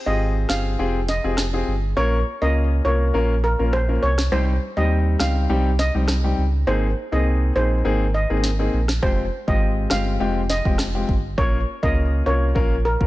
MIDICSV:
0, 0, Header, 1, 5, 480
1, 0, Start_track
1, 0, Key_signature, -4, "minor"
1, 0, Tempo, 588235
1, 1606, Time_signature, 4, 2, 24, 8
1, 10664, End_track
2, 0, Start_track
2, 0, Title_t, "Steel pan"
2, 0, Program_c, 0, 114
2, 52, Note_on_c, 0, 75, 72
2, 255, Note_off_c, 0, 75, 0
2, 405, Note_on_c, 0, 77, 73
2, 608, Note_off_c, 0, 77, 0
2, 887, Note_on_c, 0, 75, 70
2, 994, Note_off_c, 0, 75, 0
2, 1606, Note_on_c, 0, 73, 95
2, 1809, Note_off_c, 0, 73, 0
2, 1973, Note_on_c, 0, 75, 76
2, 2176, Note_off_c, 0, 75, 0
2, 2324, Note_on_c, 0, 73, 72
2, 2528, Note_off_c, 0, 73, 0
2, 2806, Note_on_c, 0, 70, 76
2, 2913, Note_off_c, 0, 70, 0
2, 3043, Note_on_c, 0, 72, 84
2, 3152, Note_off_c, 0, 72, 0
2, 3285, Note_on_c, 0, 73, 80
2, 3393, Note_off_c, 0, 73, 0
2, 3525, Note_on_c, 0, 72, 100
2, 3728, Note_off_c, 0, 72, 0
2, 3891, Note_on_c, 0, 75, 75
2, 4095, Note_off_c, 0, 75, 0
2, 4245, Note_on_c, 0, 77, 71
2, 4448, Note_off_c, 0, 77, 0
2, 4726, Note_on_c, 0, 75, 78
2, 4833, Note_off_c, 0, 75, 0
2, 5445, Note_on_c, 0, 72, 87
2, 5648, Note_off_c, 0, 72, 0
2, 5814, Note_on_c, 0, 75, 68
2, 6017, Note_off_c, 0, 75, 0
2, 6166, Note_on_c, 0, 72, 82
2, 6369, Note_off_c, 0, 72, 0
2, 6646, Note_on_c, 0, 75, 67
2, 6753, Note_off_c, 0, 75, 0
2, 7365, Note_on_c, 0, 72, 100
2, 7568, Note_off_c, 0, 72, 0
2, 7734, Note_on_c, 0, 75, 72
2, 7937, Note_off_c, 0, 75, 0
2, 8086, Note_on_c, 0, 77, 75
2, 8289, Note_off_c, 0, 77, 0
2, 8567, Note_on_c, 0, 75, 69
2, 8674, Note_off_c, 0, 75, 0
2, 9285, Note_on_c, 0, 73, 93
2, 9488, Note_off_c, 0, 73, 0
2, 9652, Note_on_c, 0, 75, 77
2, 9855, Note_off_c, 0, 75, 0
2, 10006, Note_on_c, 0, 73, 72
2, 10209, Note_off_c, 0, 73, 0
2, 10487, Note_on_c, 0, 70, 77
2, 10594, Note_off_c, 0, 70, 0
2, 10664, End_track
3, 0, Start_track
3, 0, Title_t, "Grand piano"
3, 0, Program_c, 1, 0
3, 50, Note_on_c, 1, 60, 73
3, 52, Note_on_c, 1, 65, 68
3, 53, Note_on_c, 1, 67, 69
3, 55, Note_on_c, 1, 68, 84
3, 377, Note_off_c, 1, 60, 0
3, 378, Note_off_c, 1, 65, 0
3, 379, Note_off_c, 1, 67, 0
3, 380, Note_off_c, 1, 68, 0
3, 404, Note_on_c, 1, 60, 73
3, 406, Note_on_c, 1, 65, 66
3, 406, Note_on_c, 1, 67, 63
3, 409, Note_on_c, 1, 68, 80
3, 627, Note_off_c, 1, 60, 0
3, 628, Note_off_c, 1, 65, 0
3, 628, Note_off_c, 1, 67, 0
3, 629, Note_off_c, 1, 68, 0
3, 645, Note_on_c, 1, 60, 88
3, 646, Note_on_c, 1, 65, 81
3, 648, Note_on_c, 1, 67, 81
3, 649, Note_on_c, 1, 68, 96
3, 800, Note_off_c, 1, 60, 0
3, 800, Note_off_c, 1, 65, 0
3, 801, Note_off_c, 1, 67, 0
3, 802, Note_off_c, 1, 68, 0
3, 1012, Note_on_c, 1, 60, 72
3, 1013, Note_on_c, 1, 65, 68
3, 1014, Note_on_c, 1, 67, 69
3, 1016, Note_on_c, 1, 68, 83
3, 1156, Note_off_c, 1, 60, 0
3, 1157, Note_off_c, 1, 65, 0
3, 1157, Note_off_c, 1, 67, 0
3, 1158, Note_off_c, 1, 68, 0
3, 1251, Note_on_c, 1, 60, 75
3, 1253, Note_on_c, 1, 65, 65
3, 1255, Note_on_c, 1, 67, 67
3, 1257, Note_on_c, 1, 68, 81
3, 1395, Note_off_c, 1, 60, 0
3, 1396, Note_off_c, 1, 65, 0
3, 1397, Note_off_c, 1, 67, 0
3, 1398, Note_off_c, 1, 68, 0
3, 1603, Note_on_c, 1, 58, 89
3, 1604, Note_on_c, 1, 61, 82
3, 1606, Note_on_c, 1, 65, 77
3, 1607, Note_on_c, 1, 70, 101
3, 1759, Note_off_c, 1, 58, 0
3, 1760, Note_off_c, 1, 61, 0
3, 1760, Note_off_c, 1, 65, 0
3, 1761, Note_off_c, 1, 70, 0
3, 1971, Note_on_c, 1, 58, 74
3, 1973, Note_on_c, 1, 61, 70
3, 1974, Note_on_c, 1, 65, 66
3, 1976, Note_on_c, 1, 70, 81
3, 2297, Note_off_c, 1, 58, 0
3, 2298, Note_off_c, 1, 61, 0
3, 2299, Note_off_c, 1, 65, 0
3, 2300, Note_off_c, 1, 70, 0
3, 2322, Note_on_c, 1, 58, 73
3, 2324, Note_on_c, 1, 61, 67
3, 2325, Note_on_c, 1, 65, 66
3, 2327, Note_on_c, 1, 70, 77
3, 2546, Note_off_c, 1, 58, 0
3, 2547, Note_off_c, 1, 61, 0
3, 2547, Note_off_c, 1, 65, 0
3, 2548, Note_off_c, 1, 70, 0
3, 2560, Note_on_c, 1, 58, 90
3, 2562, Note_on_c, 1, 61, 85
3, 2564, Note_on_c, 1, 65, 83
3, 2566, Note_on_c, 1, 70, 100
3, 2718, Note_off_c, 1, 58, 0
3, 2719, Note_off_c, 1, 61, 0
3, 2720, Note_off_c, 1, 65, 0
3, 2720, Note_off_c, 1, 70, 0
3, 2930, Note_on_c, 1, 58, 77
3, 2931, Note_on_c, 1, 61, 70
3, 2933, Note_on_c, 1, 65, 72
3, 2935, Note_on_c, 1, 70, 83
3, 3075, Note_off_c, 1, 58, 0
3, 3076, Note_off_c, 1, 61, 0
3, 3076, Note_off_c, 1, 65, 0
3, 3077, Note_off_c, 1, 70, 0
3, 3168, Note_on_c, 1, 58, 75
3, 3170, Note_on_c, 1, 61, 67
3, 3171, Note_on_c, 1, 65, 64
3, 3174, Note_on_c, 1, 70, 79
3, 3314, Note_off_c, 1, 58, 0
3, 3315, Note_off_c, 1, 61, 0
3, 3316, Note_off_c, 1, 65, 0
3, 3317, Note_off_c, 1, 70, 0
3, 3522, Note_on_c, 1, 55, 88
3, 3524, Note_on_c, 1, 60, 82
3, 3525, Note_on_c, 1, 63, 81
3, 3527, Note_on_c, 1, 67, 102
3, 3678, Note_off_c, 1, 55, 0
3, 3679, Note_off_c, 1, 60, 0
3, 3680, Note_off_c, 1, 63, 0
3, 3681, Note_off_c, 1, 67, 0
3, 3890, Note_on_c, 1, 55, 78
3, 3891, Note_on_c, 1, 60, 69
3, 3893, Note_on_c, 1, 63, 69
3, 3895, Note_on_c, 1, 67, 84
3, 4217, Note_off_c, 1, 55, 0
3, 4218, Note_off_c, 1, 60, 0
3, 4219, Note_off_c, 1, 63, 0
3, 4220, Note_off_c, 1, 67, 0
3, 4242, Note_on_c, 1, 55, 69
3, 4244, Note_on_c, 1, 60, 69
3, 4246, Note_on_c, 1, 63, 68
3, 4247, Note_on_c, 1, 67, 81
3, 4466, Note_off_c, 1, 55, 0
3, 4467, Note_off_c, 1, 60, 0
3, 4468, Note_off_c, 1, 63, 0
3, 4468, Note_off_c, 1, 67, 0
3, 4482, Note_on_c, 1, 55, 92
3, 4484, Note_on_c, 1, 60, 88
3, 4485, Note_on_c, 1, 63, 83
3, 4486, Note_on_c, 1, 67, 101
3, 4639, Note_off_c, 1, 55, 0
3, 4639, Note_off_c, 1, 60, 0
3, 4640, Note_off_c, 1, 63, 0
3, 4641, Note_off_c, 1, 67, 0
3, 4851, Note_on_c, 1, 55, 76
3, 4853, Note_on_c, 1, 60, 70
3, 4854, Note_on_c, 1, 63, 73
3, 4855, Note_on_c, 1, 67, 84
3, 4996, Note_off_c, 1, 55, 0
3, 4996, Note_off_c, 1, 60, 0
3, 4997, Note_off_c, 1, 63, 0
3, 4998, Note_off_c, 1, 67, 0
3, 5089, Note_on_c, 1, 55, 74
3, 5091, Note_on_c, 1, 60, 67
3, 5092, Note_on_c, 1, 63, 71
3, 5094, Note_on_c, 1, 67, 81
3, 5235, Note_off_c, 1, 55, 0
3, 5235, Note_off_c, 1, 60, 0
3, 5236, Note_off_c, 1, 63, 0
3, 5237, Note_off_c, 1, 67, 0
3, 5442, Note_on_c, 1, 58, 88
3, 5444, Note_on_c, 1, 60, 80
3, 5445, Note_on_c, 1, 63, 83
3, 5447, Note_on_c, 1, 68, 98
3, 5598, Note_off_c, 1, 58, 0
3, 5599, Note_off_c, 1, 60, 0
3, 5600, Note_off_c, 1, 63, 0
3, 5601, Note_off_c, 1, 68, 0
3, 5809, Note_on_c, 1, 58, 71
3, 5811, Note_on_c, 1, 60, 69
3, 5812, Note_on_c, 1, 63, 72
3, 5814, Note_on_c, 1, 68, 83
3, 6136, Note_off_c, 1, 58, 0
3, 6138, Note_off_c, 1, 60, 0
3, 6138, Note_off_c, 1, 63, 0
3, 6139, Note_off_c, 1, 68, 0
3, 6163, Note_on_c, 1, 58, 70
3, 6165, Note_on_c, 1, 60, 67
3, 6167, Note_on_c, 1, 63, 66
3, 6168, Note_on_c, 1, 68, 82
3, 6386, Note_off_c, 1, 58, 0
3, 6387, Note_off_c, 1, 60, 0
3, 6388, Note_off_c, 1, 63, 0
3, 6389, Note_off_c, 1, 68, 0
3, 6403, Note_on_c, 1, 58, 89
3, 6404, Note_on_c, 1, 60, 82
3, 6405, Note_on_c, 1, 63, 80
3, 6407, Note_on_c, 1, 68, 97
3, 6559, Note_off_c, 1, 58, 0
3, 6559, Note_off_c, 1, 60, 0
3, 6560, Note_off_c, 1, 63, 0
3, 6561, Note_off_c, 1, 68, 0
3, 6770, Note_on_c, 1, 58, 73
3, 6772, Note_on_c, 1, 60, 67
3, 6773, Note_on_c, 1, 63, 70
3, 6775, Note_on_c, 1, 68, 84
3, 6915, Note_off_c, 1, 58, 0
3, 6916, Note_off_c, 1, 60, 0
3, 6917, Note_off_c, 1, 63, 0
3, 6918, Note_off_c, 1, 68, 0
3, 7010, Note_on_c, 1, 58, 72
3, 7011, Note_on_c, 1, 60, 69
3, 7012, Note_on_c, 1, 63, 70
3, 7015, Note_on_c, 1, 68, 83
3, 7155, Note_off_c, 1, 58, 0
3, 7155, Note_off_c, 1, 60, 0
3, 7156, Note_off_c, 1, 63, 0
3, 7158, Note_off_c, 1, 68, 0
3, 7363, Note_on_c, 1, 56, 89
3, 7364, Note_on_c, 1, 60, 80
3, 7366, Note_on_c, 1, 65, 84
3, 7367, Note_on_c, 1, 67, 95
3, 7519, Note_off_c, 1, 56, 0
3, 7520, Note_off_c, 1, 60, 0
3, 7521, Note_off_c, 1, 65, 0
3, 7521, Note_off_c, 1, 67, 0
3, 7731, Note_on_c, 1, 56, 73
3, 7732, Note_on_c, 1, 60, 68
3, 7734, Note_on_c, 1, 65, 70
3, 7736, Note_on_c, 1, 67, 83
3, 8058, Note_off_c, 1, 56, 0
3, 8058, Note_off_c, 1, 60, 0
3, 8059, Note_off_c, 1, 65, 0
3, 8060, Note_off_c, 1, 67, 0
3, 8084, Note_on_c, 1, 56, 71
3, 8086, Note_on_c, 1, 60, 65
3, 8088, Note_on_c, 1, 65, 65
3, 8090, Note_on_c, 1, 67, 79
3, 8307, Note_off_c, 1, 56, 0
3, 8308, Note_off_c, 1, 60, 0
3, 8309, Note_off_c, 1, 65, 0
3, 8310, Note_off_c, 1, 67, 0
3, 8324, Note_on_c, 1, 56, 93
3, 8325, Note_on_c, 1, 60, 85
3, 8327, Note_on_c, 1, 65, 81
3, 8329, Note_on_c, 1, 67, 102
3, 8479, Note_off_c, 1, 56, 0
3, 8480, Note_off_c, 1, 60, 0
3, 8481, Note_off_c, 1, 65, 0
3, 8482, Note_off_c, 1, 67, 0
3, 8691, Note_on_c, 1, 56, 79
3, 8693, Note_on_c, 1, 60, 72
3, 8695, Note_on_c, 1, 65, 69
3, 8696, Note_on_c, 1, 67, 83
3, 8836, Note_off_c, 1, 56, 0
3, 8836, Note_off_c, 1, 60, 0
3, 8838, Note_off_c, 1, 65, 0
3, 8838, Note_off_c, 1, 67, 0
3, 8930, Note_on_c, 1, 56, 74
3, 8931, Note_on_c, 1, 60, 67
3, 8933, Note_on_c, 1, 65, 64
3, 8935, Note_on_c, 1, 67, 83
3, 9075, Note_off_c, 1, 56, 0
3, 9076, Note_off_c, 1, 60, 0
3, 9077, Note_off_c, 1, 65, 0
3, 9078, Note_off_c, 1, 67, 0
3, 9283, Note_on_c, 1, 58, 86
3, 9285, Note_on_c, 1, 61, 80
3, 9286, Note_on_c, 1, 65, 80
3, 9288, Note_on_c, 1, 70, 98
3, 9439, Note_off_c, 1, 58, 0
3, 9440, Note_off_c, 1, 61, 0
3, 9440, Note_off_c, 1, 65, 0
3, 9441, Note_off_c, 1, 70, 0
3, 9650, Note_on_c, 1, 58, 75
3, 9652, Note_on_c, 1, 61, 69
3, 9653, Note_on_c, 1, 65, 70
3, 9655, Note_on_c, 1, 70, 84
3, 9977, Note_off_c, 1, 58, 0
3, 9978, Note_off_c, 1, 61, 0
3, 9979, Note_off_c, 1, 65, 0
3, 9980, Note_off_c, 1, 70, 0
3, 10002, Note_on_c, 1, 58, 74
3, 10004, Note_on_c, 1, 61, 70
3, 10006, Note_on_c, 1, 65, 68
3, 10007, Note_on_c, 1, 70, 79
3, 10226, Note_off_c, 1, 58, 0
3, 10227, Note_off_c, 1, 61, 0
3, 10228, Note_off_c, 1, 65, 0
3, 10228, Note_off_c, 1, 70, 0
3, 10241, Note_on_c, 1, 58, 95
3, 10243, Note_on_c, 1, 61, 84
3, 10244, Note_on_c, 1, 65, 84
3, 10246, Note_on_c, 1, 70, 105
3, 10398, Note_off_c, 1, 58, 0
3, 10399, Note_off_c, 1, 61, 0
3, 10400, Note_off_c, 1, 65, 0
3, 10400, Note_off_c, 1, 70, 0
3, 10611, Note_on_c, 1, 58, 77
3, 10612, Note_on_c, 1, 61, 69
3, 10613, Note_on_c, 1, 65, 71
3, 10615, Note_on_c, 1, 70, 85
3, 10664, Note_off_c, 1, 58, 0
3, 10664, Note_off_c, 1, 61, 0
3, 10664, Note_off_c, 1, 65, 0
3, 10664, Note_off_c, 1, 70, 0
3, 10664, End_track
4, 0, Start_track
4, 0, Title_t, "Sub bass"
4, 0, Program_c, 2, 38
4, 53, Note_on_c, 2, 32, 100
4, 370, Note_off_c, 2, 32, 0
4, 405, Note_on_c, 2, 31, 90
4, 621, Note_off_c, 2, 31, 0
4, 646, Note_on_c, 2, 29, 94
4, 975, Note_off_c, 2, 29, 0
4, 1012, Note_on_c, 2, 29, 82
4, 1329, Note_off_c, 2, 29, 0
4, 1366, Note_on_c, 2, 31, 81
4, 1581, Note_off_c, 2, 31, 0
4, 1606, Note_on_c, 2, 34, 111
4, 1821, Note_off_c, 2, 34, 0
4, 1973, Note_on_c, 2, 37, 91
4, 2290, Note_off_c, 2, 37, 0
4, 2326, Note_on_c, 2, 36, 90
4, 2542, Note_off_c, 2, 36, 0
4, 2567, Note_on_c, 2, 34, 91
4, 2896, Note_off_c, 2, 34, 0
4, 2934, Note_on_c, 2, 34, 86
4, 3250, Note_off_c, 2, 34, 0
4, 3286, Note_on_c, 2, 36, 84
4, 3501, Note_off_c, 2, 36, 0
4, 3526, Note_on_c, 2, 36, 106
4, 3741, Note_off_c, 2, 36, 0
4, 3892, Note_on_c, 2, 39, 83
4, 4210, Note_off_c, 2, 39, 0
4, 4245, Note_on_c, 2, 37, 83
4, 4461, Note_off_c, 2, 37, 0
4, 4485, Note_on_c, 2, 36, 97
4, 4815, Note_off_c, 2, 36, 0
4, 4852, Note_on_c, 2, 36, 79
4, 5169, Note_off_c, 2, 36, 0
4, 5205, Note_on_c, 2, 37, 82
4, 5421, Note_off_c, 2, 37, 0
4, 5445, Note_on_c, 2, 32, 112
4, 5661, Note_off_c, 2, 32, 0
4, 5812, Note_on_c, 2, 36, 85
4, 6129, Note_off_c, 2, 36, 0
4, 6165, Note_on_c, 2, 34, 90
4, 6381, Note_off_c, 2, 34, 0
4, 6405, Note_on_c, 2, 32, 98
4, 6735, Note_off_c, 2, 32, 0
4, 6773, Note_on_c, 2, 32, 82
4, 7090, Note_off_c, 2, 32, 0
4, 7125, Note_on_c, 2, 34, 81
4, 7341, Note_off_c, 2, 34, 0
4, 7365, Note_on_c, 2, 29, 107
4, 7581, Note_off_c, 2, 29, 0
4, 7735, Note_on_c, 2, 32, 96
4, 8051, Note_off_c, 2, 32, 0
4, 8086, Note_on_c, 2, 31, 91
4, 8301, Note_off_c, 2, 31, 0
4, 8325, Note_on_c, 2, 29, 91
4, 8655, Note_off_c, 2, 29, 0
4, 8693, Note_on_c, 2, 29, 86
4, 9010, Note_off_c, 2, 29, 0
4, 9048, Note_on_c, 2, 31, 80
4, 9262, Note_off_c, 2, 31, 0
4, 9285, Note_on_c, 2, 34, 112
4, 9501, Note_off_c, 2, 34, 0
4, 9655, Note_on_c, 2, 37, 93
4, 9971, Note_off_c, 2, 37, 0
4, 10006, Note_on_c, 2, 36, 86
4, 10222, Note_off_c, 2, 36, 0
4, 10246, Note_on_c, 2, 34, 92
4, 10576, Note_off_c, 2, 34, 0
4, 10613, Note_on_c, 2, 34, 92
4, 10664, Note_off_c, 2, 34, 0
4, 10664, End_track
5, 0, Start_track
5, 0, Title_t, "Drums"
5, 399, Note_on_c, 9, 37, 93
5, 404, Note_on_c, 9, 38, 114
5, 480, Note_off_c, 9, 37, 0
5, 486, Note_off_c, 9, 38, 0
5, 886, Note_on_c, 9, 38, 65
5, 967, Note_off_c, 9, 38, 0
5, 1119, Note_on_c, 9, 37, 87
5, 1124, Note_off_c, 9, 37, 0
5, 1124, Note_on_c, 9, 37, 89
5, 1124, Note_on_c, 9, 38, 110
5, 1206, Note_off_c, 9, 37, 0
5, 1206, Note_off_c, 9, 38, 0
5, 3045, Note_on_c, 9, 37, 88
5, 3127, Note_off_c, 9, 37, 0
5, 3410, Note_on_c, 9, 37, 78
5, 3416, Note_on_c, 9, 38, 102
5, 3492, Note_off_c, 9, 37, 0
5, 3497, Note_off_c, 9, 38, 0
5, 4240, Note_on_c, 9, 37, 96
5, 4245, Note_on_c, 9, 38, 116
5, 4321, Note_off_c, 9, 37, 0
5, 4327, Note_off_c, 9, 38, 0
5, 4725, Note_on_c, 9, 38, 63
5, 4807, Note_off_c, 9, 38, 0
5, 4959, Note_on_c, 9, 37, 86
5, 4964, Note_off_c, 9, 37, 0
5, 4964, Note_on_c, 9, 37, 94
5, 4964, Note_on_c, 9, 38, 111
5, 5046, Note_off_c, 9, 37, 0
5, 5046, Note_off_c, 9, 38, 0
5, 6884, Note_on_c, 9, 38, 68
5, 6966, Note_off_c, 9, 38, 0
5, 7249, Note_on_c, 9, 37, 86
5, 7254, Note_on_c, 9, 38, 99
5, 7330, Note_off_c, 9, 37, 0
5, 7336, Note_off_c, 9, 38, 0
5, 7365, Note_on_c, 9, 36, 111
5, 7447, Note_off_c, 9, 36, 0
5, 7735, Note_on_c, 9, 36, 91
5, 7816, Note_off_c, 9, 36, 0
5, 8078, Note_on_c, 9, 37, 94
5, 8084, Note_on_c, 9, 38, 121
5, 8160, Note_off_c, 9, 37, 0
5, 8166, Note_off_c, 9, 38, 0
5, 8565, Note_on_c, 9, 38, 64
5, 8646, Note_off_c, 9, 38, 0
5, 8693, Note_on_c, 9, 36, 94
5, 8775, Note_off_c, 9, 36, 0
5, 8798, Note_on_c, 9, 37, 88
5, 8804, Note_off_c, 9, 37, 0
5, 8804, Note_on_c, 9, 37, 94
5, 8804, Note_on_c, 9, 38, 110
5, 8885, Note_off_c, 9, 37, 0
5, 8885, Note_off_c, 9, 38, 0
5, 9048, Note_on_c, 9, 36, 94
5, 9129, Note_off_c, 9, 36, 0
5, 9286, Note_on_c, 9, 36, 111
5, 9367, Note_off_c, 9, 36, 0
5, 9655, Note_on_c, 9, 36, 87
5, 9736, Note_off_c, 9, 36, 0
5, 10246, Note_on_c, 9, 36, 96
5, 10328, Note_off_c, 9, 36, 0
5, 10613, Note_on_c, 9, 36, 91
5, 10664, Note_off_c, 9, 36, 0
5, 10664, End_track
0, 0, End_of_file